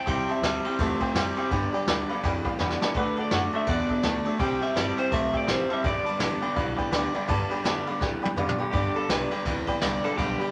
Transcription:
0.06 C2 C3 G3 C4 E4 G4 C5 E5 G5, kick, ride
0.28 C4 E4 G4 C5 E5 A5, muted upright bass stroke, ride
0.42 D2 C3 G3 E4 G4 C5 E5 A5, snare, ride
0.64 C3 G3 E4 G4 C5 E5 G5, muted upright bass stroke, ride
0.68 C4
0.78 E2 C3 G3 A3 C4 E4 C5 E5 A5, kick, snare, ride
0.83 G4
1.00 C4 E4 G4 C5 E5 G5, kick, ride
1.14 F2 C3 G3 C4 E4 G4 C5 E5 G5, snare, ride
1.35 C3 G3 C4 E4 G4 C5 E5 G5, ride
1.51 G2 D3 G3 B3 D4 G4 B4 D5 G5, kick, ride
1.72 G3 B3 D4 G4 B4 D5 G5, ride
1.87 D2 G2 D3 G3 B3 D4 G4 B4 D5 G5, snare, ride
2.08 G2 D3 G3 B3 D4 G4 B4 D5 F5, muted upright bass stroke, ride
2.23 F2 G2 E3 G3 B3 D4 G4 B4 D5 G5, kick, snare, ride
2.44 G3 B3 D4 G4 B4 D5 F5 G5, kick, ride
2.59 E2 G2 D3 G3 B3 D4 G4 B4 D5 G5 B5, snare
2.70 snare
2.80 G2 D3 G3 B3 D4 G4 B4 D5 A5, snare
2.94 D3 A3 D4 F#4 A4 B4 D5 F#5, kick, ride
3.16 D4 F#4 A4 D5 F#5, muted upright bass stroke, ride
3.21 D5
3.31 F#2 D3 A3 D4 F#4 A4 D5 F#5, snare, ride
3.50 D3 A3 D4 F#4 A4 D5 E5, muted upright bass stroke, ride
3.56 E5
3.66 E2 D3 A3 B3 D4 F#4 A4 D5 F#5, kick, ride
3.87 D4 F#4 A4 D5, kick, ride
3.91 E5
4.02 D2 D3 A3 D4 F#4 A4 D5 A5, snare, ride
4.24 D3 A3 D4 F#4 A4 D5 E5, muted upright bass stroke, ride
4.38 C2 C3 G3 C4 E4 G4 C5 E5 G5, kick, ride
4.61 C4 E4 G4 C5 E5 G5, muted upright bass stroke, ride
4.74 G1 C3 G3 C4 E4 G4 C5 D5 E5 A5, snare, ride
4.96 C3 G3 C4 E4 G4 C5 E5 G5, muted upright bass stroke, ride
5.11 B1 C3 G3 A3 C4 E4 G4 C5 E5 A5, kick, snare, ride
5.32 C4 E4 G4 C5 E5 G5, kick, ride
5.37 D5
5.47 A1 C3 G3 C4 E4 G4 C5 E5 G5, snare, ride
5.51 C5
5.68 C3 G3 C4 E4 G4 C5 E5 A5, muted upright bass stroke, ride
5.73 E5
5.83 G1 G2 D3 G3 B3 D4 B4 D5 G5, kick, ride
5.87 G4
6.03 G4 B4 D5 A5, muted upright bass stroke, ride
6.08 G3 B3 D4
6.18 A1 G2 D3 G3 B3 D4 G4 B4 D5 A5, snare, ride
6.41 G2 D3 B3 D4 G4 B4 D5 G5, muted upright bass stroke, ride
6.45 G3
6.54 B1 G2 E3 G3 B3 B4 D5 F5, kick, ride
6.59 D4 G4
6.76 G3 B3 D4 G4 B4 D5 G5, muted upright bass stroke, kick, ride
6.91 D2 G2 D3 G3 B3 D4 G4 B4 D5 G5, snare, ride
7.12 G2 D3 G3 B3 D4 G4 B4 D5 G5, muted upright bass stroke, ride
7.28 G2 D3 G3 B3 D4 G4 B4 D5 A5, kick, ride
7.50 G3 B3 D4 G4 B4 D5 G5, ride
7.64 F2 G2 D3 G3 B3 D4 G4 B4 D5 A5, snare, ride
7.86 G2 D3 G3 B3 D4 G4 B4 D5 F5, ride
8.00 G2 E3 G3 B3 D4 G4 B4 D5 G5, kick, snare
8.22 G3 B3 D4 G4 B4 D5 G5, high tom
8.36 F2 G2 D3 G3 B3 D4 G4 B4 D5 F5, mid tom
8.49 mid tom
8.58 G2 D3 G3 B3 D4 G4 B4 D5 G5
8.71 G2 D3 G3 B3 D4 G4 B4 D5 G5, kick, ride
8.94 G3 B3 D4 G4 A4 B4 D5 F5, muted upright bass stroke, ride
9.08 B1 G2 D3 G3 B3 D4 G4 B4 D5 G5, snare, ride
9.30 G2 D3 G3 B3 D4 G4 B4 D5 G5, muted upright bass stroke, ride
9.45 D2 G2 E3 G3 B3 D4 G4 B4 D5 G5, kick, snare, ride
9.66 G3 B3 D4 G4 B4 D5 G5, muted upright bass stroke, kick, ride
9.81 C2 G2 D3 G3 B3 D4 G4 B4 D5 G5, snare, ride
10.04 G2 D3 G3 B3 D4 G4 A4 B4 D5 F5, ride
10.17 B1 G2 D3 G3 B3 D4 G4 B4 D5 F5, kick, ride
10.38 B3 D4 G4 B4 D5 G5, muted upright bass stroke, ride
10.43 G3

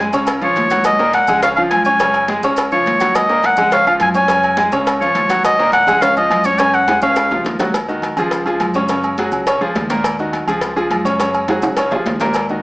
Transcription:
0.00 G#3 G#4 G#5
0.13 C#2 C#3 C#4 C#5, low agogo, maracas
0.27 cowbell, high conga, low agogo, maracas
0.41 F3 F4 C#5 F5, high conga, maracas
0.55 D#2, cowbell, high conga, low agogo, maracas
0.70 F#3 F#4 F#5, cowbell, high conga, maracas
0.84 D#5, cowbell, high conga, low agogo, maracas
0.99 A#2 A#3 A#4, high conga, maracas
1.13 F#5, cowbell, high conga, low agogo, maracas
1.27 C#2 G#3 G#4 G#5, high conga, low conga, low agogo, maracas
1.42 C#3 C#4 C#5 F5, cowbell, high conga, maracas
1.56 F3 F4 F5, high conga, low agogo, maracas
1.70 F#2 G#5, cowbell, high conga, low agogo, maracas
1.85 C#4 C#5 G#5 C#6, high conga, maracas
1.99 C#3 C#4 C#5, cowbell, high conga, low agogo, maracas
2.14 high conga, low agogo, maracas
2.28 G#3 G#4 G#5, cowbell, high conga, maracas
2.43 C#2 C#3 C#4 C#5, high conga, low agogo, maracas
2.56 cowbell, low agogo, maracas
2.71 F3 F4 C#5 F5, high conga, maracas
2.86 D#2, cowbell, high conga, low agogo, maracas
3.00 F#3 F#4 F#5, cowbell, high conga, maracas
3.15 D#5, cowbell, high conga, low agogo, maracas
3.29 A#2 A#3 A#4, high conga, maracas
3.43 F#5, cowbell, high conga, low agogo, maracas
3.56 C#2 G#3 G#4 G#5, high conga, low conga, low agogo, maracas
3.72 C#3 C#4 C#5 F5, cowbell, high conga, low conga, maracas
3.86 F3 F4 F5, high conga, low agogo, maracas
4.00 F#2 G#5, cowbell, high conga, low agogo, maracas
4.14 C#4 C#5 G#5 C#6, high conga, maracas
4.28 C#3 C#4 C#5, cowbell, high conga, low agogo, maracas
4.43 high conga, low agogo, maracas
4.57 G#3 G#4 G#5, cowbell, high conga, maracas
4.72 C#2 C#3 C#4 C#5, high conga, low agogo, maracas
4.86 cowbell, high conga, low agogo, maracas
5.01 F3 F4 C#5 F5, high conga, maracas
5.15 D#2, cowbell, high conga, low agogo, maracas
5.29 F#3 F#4 F#5, cowbell, high conga, maracas
5.44 D#5, cowbell, high conga, low agogo, maracas
5.58 A#2 A#3 A#4, high conga, maracas
5.72 F#5, cowbell, high conga, low agogo, maracas
5.87 C#2 G#3 G#4 G#5, high conga, low conga, low agogo, maracas
6.01 C#3 C#4 C#5 F5, cowbell, high conga, low conga, maracas
6.15 F3 F4 D#5 F5, high conga, low agogo, maracas
6.30 F#2, cowbell, high conga, low agogo, maracas
6.44 C#4 C#5 C#6, high conga, maracas
6.58 C#3 C#4 C#5 G#5, cowbell, high conga, low agogo, maracas
6.74 F#5, high conga, low agogo, maracas
6.88 G#3 G#4 G#5, cowbell, high conga, high timbale, maracas
7.01 C#2 C#3 C#4 C#5 F5, high conga, low agogo, maracas
7.16 cowbell, high bongo, high conga, low agogo, maracas
7.31 F3 F4 F5, high conga, low timbale, maracas
7.45 D#2, cowbell, low bongo, high conga, low agogo, maracas
7.59 F#3 F#4 F#5, cowbell, low bongo, high conga, low timbale, maracas
7.74 cowbell, high conga, low agogo, maracas
7.88 D#3 D#4 F#4, high conga, maracas
8.02 cowbell, high conga, low agogo, maracas
8.17 C#2 F3 F4 G#4, high conga, low conga, low agogo, maracas
8.31 cowbell, high conga, maracas
8.46 F3 F4 G#4, high conga, low agogo, maracas
8.60 F#2, cowbell, high conga, low agogo, maracas
8.74 C#3 C#4 C#5, high conga, maracas
8.88 C#3 C#4 C#5, cowbell, high conga, low agogo, maracas
9.03 high conga, low agogo, maracas
9.17 F#3 F#4 G#4, cowbell, high conga, maracas
9.32 C#2, low agogo, maracas
9.47 C#3 C#4 C#5, cowbell, high conga, low agogo, maracas
9.61 C#2 F3 F4 G#4, high conga, maracas
9.75 D#2, cowbell, high conga, low timbale, low agogo, maracas
9.90 A#2 A#3 A#4, cowbell, high conga, maracas
10.04 cowbell, high conga, low agogo, maracas
10.19 D#3 D#4 F#4, high conga, maracas
10.33 cowbell, high conga, low agogo, maracas
10.47 C#2 F3 F4 G#4, high conga, low conga, low agogo, maracas
10.61 cowbell, high conga, low conga, maracas
10.76 F3 F4 G#4, high conga, low agogo, maracas
10.90 F#2, cowbell, high conga, low agogo, maracas
11.05 C#3 C#4 C#5, high conga, maracas
11.19 C#3 C#4 C#5, cowbell, high conga, low agogo, maracas
11.34 high conga, low agogo, maracas
11.48 F#3 F#4 G#4, cowbell, high conga, high timbale, maracas
11.62 C#2, high conga, high timbale, low agogo, maracas
11.77 C#3 C#4 C#5, cowbell, high conga, low agogo, maracas
11.91 C#2 F3 F4 G#4, high conga, low timbale, maracas
12.06 D#2, cowbell, high conga, low timbale, low agogo, maracas
12.20 A#2 A#3 A#4, cowbell, high conga, low timbale, maracas
12.34 cowbell, high conga, low agogo, maracas
12.49 D#3 D#4 F#4, high conga, maracas

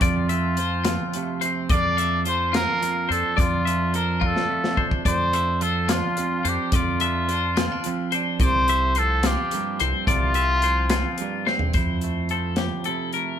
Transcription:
Already playing: F3 A3 C4
0.01 F2 F4 D5, kick, closed hi-hat
0.29 C4 E5, closed hi-hat
0.57 F3 C4 C5, closed hi-hat
0.85 C4 F4, snare, closed hi-hat
1.13 C3 A3, closed hi-hat
1.41 C5, closed hi-hat
1.45 C4
1.69 F2 F3 A#3 D4 D5, kick, closed hi-hat
1.74 F4
1.97 D4 E5, closed hi-hat
2.25 F3 F4 C5, closed hi-hat
2.53 C4 F4 A#4, snare, closed hi-hat
2.68 D4
2.81 F2 A#3, closed hi-hat
3.09 F2 D4 A4 C5, closed hi-hat
3.36 F2 F4 D5, kick, closed hi-hat
3.65 D4 E5, closed hi-hat
3.93 F3 A4 A#4 C5, closed hi-hat
4.21 D4 F4, kick
4.26 A4
4.36 snare
4.49 F2 A3
4.64 snare
4.77 D4 C5, kick
4.91 kick
5.05 F2 C5 D5, kick, closed hi-hat
5.33 D4 E5, closed hi-hat
5.61 F3 F4 A4 C5, closed hi-hat
5.89 D4 F4, snare, closed hi-hat
6.17 F2 C4, closed hi-hat
6.45 F2 D4 C5, closed hi-hat
6.49 G4
6.72 F2 F4 D5, kick, closed hi-hat
7.00 D4 E5, closed hi-hat
7.28 F3 D4 C5, closed hi-hat
7.57 C4 F4, snare, closed hi-hat
7.72 D4
7.84 F2 C4, closed hi-hat
8.12 D4 C5, closed hi-hat
8.40 C2 C3 C5 D5, kick, closed hi-hat
8.68 C4 E5, closed hi-hat
8.95 F3 F4 A4 C5, closed hi-hat
9.23 F4 G4, snare, closed hi-hat
9.27 C4
9.51 G2 A#3, closed hi-hat
9.80 C2 C4 C5, closed hi-hat
10.07 C2 C3 F4 D5, kick, closed hi-hat
10.34 C4 E5, closed hi-hat
10.62 F3 C4 C5, closed hi-hat
10.90 F4, snare, closed hi-hat
10.94 C4
11.18 G2 A#3, closed hi-hat
11.47 C4 C5, snare
11.59 floor tom
11.73 F2 E4 C5, kick, closed hi-hat
12.01 A3, closed hi-hat
12.29 F3 A4 C5, closed hi-hat
12.56 G4, snare, closed hi-hat
12.84 C3 E4 A4, closed hi-hat
13.13 A3 A#4, closed hi-hat

